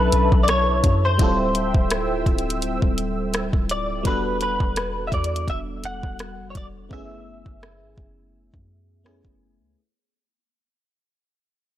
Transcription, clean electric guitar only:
Already playing: B4
0.43 D5
0.50 C#5
1.05 C5
3.71 D5
4.07 B4
4.42 B4
5.07 E5
5.14 D5
5.50 E5
5.85 F#5
6.50 C#5
6.57 D5
6.93 E5

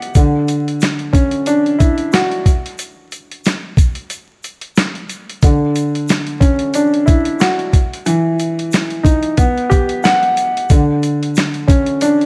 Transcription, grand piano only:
Already playing: B3 G4 F#5
0.16 D3
1.13 C#4
1.47 D4
1.79 E4
2.13 F#4
5.44 D3
6.40 C#4
6.75 D4
7.06 E4
7.40 F#4
8.06 E3
9.03 D#4
9.38 B3
9.70 G4
10.04 F#5
10.71 D3
11.68 C#4
12.02 D4

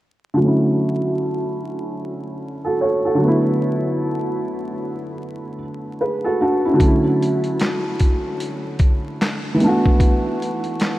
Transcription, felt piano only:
0.34 D3 F#3
0.41 A3 C#4
0.47 E4
2.64 F#4 A4
2.81 A4 C#5
3.05 F#4 A4
3.15 D3 F#3
3.21 A3 B3
3.28 E4
6.01 G#4 B4
6.24 F#4 A4
6.41 D4 F#4
6.65 C#4 E4
6.74 D3 F#3
6.80 A3 C#4
6.87 E4
9.54 E3 G#3
9.61 A3 B3 D4
9.67 F#4

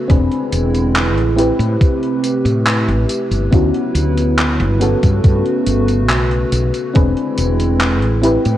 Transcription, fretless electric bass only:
0.10 E1
0.52 E1
1.17 A1
1.59 A2
2.45 A2
2.88 A1
3.31 G1
3.53 D2
3.95 D2
4.60 G1
5.03 G2
5.24 G2
5.66 G1
6.09 B1
6.52 B1
6.95 E1
7.38 E1
8.03 A1
8.46 A2

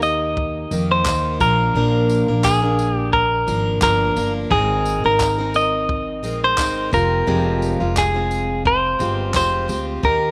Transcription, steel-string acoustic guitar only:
Already playing: A#3 D#4 G4
0.71 D#3 A#3 D#4 G4
1.05 D#3 A#3 D#4 G4
1.40 F3 A#3 D4 A#4
1.75 A#2 F3 A#3 D4 A#4
2.28 A#3 D4 A#4
2.62 A#3 D4 A#4
3.47 F3 A#3 D4 A#4
3.82 F3 A#3 D4 A#4
4.16 F3 A#3 D4 A#4
4.50 G#3 C4 D#4 A#4
5.04 C4 D#4 A#4
5.38 C4 D#4 A#4
6.23 G#3 C4 D#4 A#4
6.57 G#3 C4 D#4 A#4
6.91 G#3 C4 F4 G4
7.27 F2 F3 G#3 C4 F4 G4
7.80 G#3 C4 F4 G4
8.14 G#3 C4 F4
8.99 G#3 C4 F4 G4
9.34 G#3 C4 F4 G4
9.68 G#3 C4 F4 G4
10.03 D#3 D#4 G4 A#4

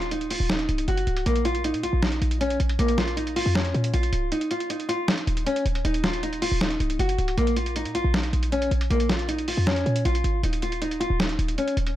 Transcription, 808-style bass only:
Already playing: D#1
0.40 D#1
0.69 C#1
0.88 F#1
1.07 C#1
1.26 A#1
1.74 A#2
1.83 A#1
1.93 A#1
2.22 A#1
2.60 A#1
2.79 A#1
3.46 F2
3.74 A#2
3.94 A#1
4.13 C#1
5.27 D#1
5.66 D#1
5.85 D#1
6.52 D#1
6.80 C#1
6.99 F#1
7.18 C#1
7.38 A#1
7.85 A#2
7.95 A#1
8.04 A#1
8.33 A#1
8.71 A#1
8.90 A#1
9.57 F2
9.86 A#2
10.05 A#1
10.24 G#1
10.43 D#1
11.10 D#1
11.39 D#1
11.77 D#1

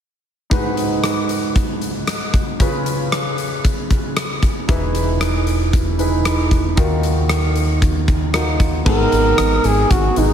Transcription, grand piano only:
0.50 G#2 D#4 F#4 G#4 B4
2.59 C#3 C#4 F4 G#4 B4
4.68 E3 D#4 E4 G#4 B4
5.98 D#4 E4 G#4 B4
6.76 D#3 D#4 F4 F#4 A#4
8.33 D#4 F4 F#4 A#4
8.85 G#2 B3 D#4 F#4 G#4
10.16 B3 D#4 F#4 G#4

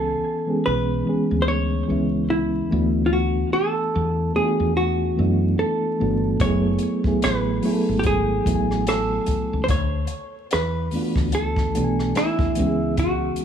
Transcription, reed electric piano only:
Already playing: E3 B3 C#4 G#5
0.46 E3 G#3 B3 C#4 G#4
1.05 E3 G#3 B3 C#4
1.09 G#4
1.87 E3 G#3 B3 C#4
1.92 E4
2.70 E3 A3 B3 D4 F#4
4.34 E3 A3 B3 D4
4.39 F4
4.45 F#4
5.16 E3 A3 B3 D4
5.20 E4
5.99 E3 A3 B3 D4
6.03 F#4
6.39 F#3 A3 B3 E4
6.44 G#4
7.04 F#3 A3 B3 E4
7.08 G#4
7.63 F#3 A3 B3 E4
7.67 G#4
7.73 A4
8.45 F#3 A3 B3 E4
8.49 F#4
8.55 G#5
10.92 E3 A3 B3 D4 F4
11.02 F#4
11.74 E3 A3 B3 D4
11.78 G4
11.84 G#5
12.56 E3 G#3 B3 C#4
12.60 G4
12.66 G#4

